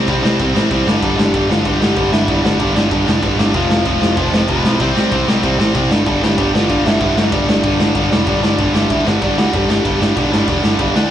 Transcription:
0.08 C2 C3 G3 C4 C5, kick, crash
0.23 C2 C3 G3 C4, snare
0.40 C2 C3 G3 C4, kick, crash
0.55 A1 C3 G3 C4, snare
0.71 C2 C3 G3 C4, kick, crash
0.86 G1 G2 D3 G3, snare
1.02 G1 G2 D3 G3 A4 A5, kick, crash
1.18 G1 G2 D3 G3 G4 G5, snare
1.34 G1 G2 D3 G3, kick, crash
1.49 G1 G2 D3 G3 F4 F5, snare
1.65 G1 G2 D3 G3 G4 G5, kick, crash
1.81 G1 G2 D3 G3, snare
1.96 G1 G2 D3 G3, kick, crash
2.12 G1 G2 D3 G3 E4 E5, snare
2.28 G1 G2 D3 G3, kick, crash
2.42 G1 G2 D3 G3 D4 D5, snare
2.59 G1 G2 D3 G3 D4 D5, kick, crash
2.75 G1 G2 D3 G3, snare
2.91 G1 G2 D3 G3, kick, crash
3.07 F1 G2 D3 G3, snare
3.22 G1 G2 D3 G3, kick, crash
3.38 G1 G2 D3 G3, snare
3.53 F1 F2 C3 F3 F4 F5, kick, crash
3.70 F1 F2 C3 F3, snare
3.85 F1 F2 C3 F3 F4 F5, kick, crash
4.01 F1 F2 C3 F3, snare
4.17 F1 F2 C3 F3 A4 A5, kick, crash
4.33 F1 F2 C3 F3, snare
4.48 F1 F2 C3 F3 B4 B5, kick, crash
4.64 B1 F2 C3 F3, snare
4.73 B5
4.80 C2 C3 G3 C4 C5 C6, kick, crash
4.95 C2 C3 G3 C4, snare
5.12 C2 C3 G3 C4, kick, crash
5.27 C2 C3 G3 C4, snare
5.43 C2 C3 G3 C4, kick, crash
5.59 A1 C3 G3 C4, snare
5.75 C2 C3 G3 C4, kick, crash
5.90 G1 G2 D3 G3, snare
6.06 G1 G2 D3 G3 A4 A5, kick, crash
6.22 G1 G2 D3 G3 G4 G5, snare
6.37 G1 G2 D3 G3, kick, crash
6.53 G1 G2 D3 G3 F4 F5, snare
6.69 G1 G2 D3 G3, kick, crash
6.85 G1 G2 D3 G3 E4 E5, snare
7.00 G1 G2 D3 G3, kick, crash
7.17 G1 G2 D3 G3 D4 D5, snare
7.32 G1 G2 D3 G3, kick, crash
7.48 G1 G2 D3 G3, snare
7.63 G1 G2 D3 G3, kick, crash
7.79 G1 G2 D3 G3, snare
7.94 G1 G2 D3 G3, kick, crash
8.10 F1 G2 D3 G3, snare
8.27 G1 G2 D3 G3 D4 D5, kick, crash
8.42 G1 G2 D3 G3, snare
8.49 D4 D5
8.58 G1 G2 D3 G3, kick, ride
8.74 G1 G2 D3 G3, snare
8.90 D2 G2 D3 G3 E4 E5, kick, ride
9.05 G1 G2 D3 G3 C4 C5, snare
9.21 G1 G2 D3 G3 D4 D5, kick, ride
9.37 D2 G2 D3 G3 F#4 F#5, snare
9.53 G1 G2 D3 G3 G4 G5, kick, ride
9.69 G1 G2 D3 G3, snare
9.85 G1 G2 D3 G3 G4 G5, kick, ride
10.00 G1 G2 D3 G3, snare
10.16 B1 G2 D3 G3, kick, ride
10.32 G1 G2 D3 G3, snare
10.47 E1 G2 D3 G3, kick, ride
10.63 G1 G2 D3 G3, snare
10.79 G1 G2 D3 G3, kick, ride
10.95 D2 D3 A3 D4, snare

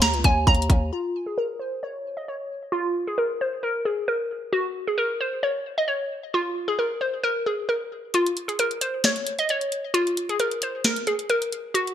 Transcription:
Already playing: D#2
0.02 A#5, snare, closed hi-hat
0.14 C#2, closed hi-hat
0.24 D#2 G#5, kick, closed hi-hat
0.47 D#2 A#5, kick, closed hi-hat
0.55 closed hi-hat
0.62 closed hi-hat
0.70 D#2, kick, closed hi-hat
0.93 F4
1.26 G#4
1.38 A#4
1.59 C5
1.83 C#5
2.17 D#5
2.28 C#5
2.72 F4
3.07 G#4
3.18 A#4
3.41 C5
3.63 A#4
3.85 G#4
4.08 A#4
4.53 F#4
4.87 G#4
4.98 A#4
5.21 C5
5.43 C#5
5.78 D#5
5.88 C#5
6.34 F4
6.68 G#4
6.79 A#4
7.01 C5
7.23 A#4
7.46 G#4
7.69 A#4
8.14 F4, closed hi-hat
8.26 closed hi-hat
8.37 closed hi-hat
8.48 G#4, closed hi-hat
8.59 A#4, closed hi-hat
8.71 closed hi-hat
8.81 C5, closed hi-hat
9.04 C#5, snare, closed hi-hat
9.16 closed hi-hat
9.27 closed hi-hat
9.39 D#5, closed hi-hat
9.49 C#5, closed hi-hat
9.61 closed hi-hat
9.72 closed hi-hat
9.94 F4, closed hi-hat
10.07 closed hi-hat
10.17 closed hi-hat
10.29 G#4, closed hi-hat
10.40 A#4, closed hi-hat
10.51 closed hi-hat
10.62 C5, closed hi-hat
10.84 A#4, snare, closed hi-hat
10.96 closed hi-hat
11.07 G#4, closed hi-hat
11.19 closed hi-hat
11.30 A#4, closed hi-hat
11.42 closed hi-hat
11.52 closed hi-hat
11.74 F#4, closed hi-hat
11.87 closed hi-hat

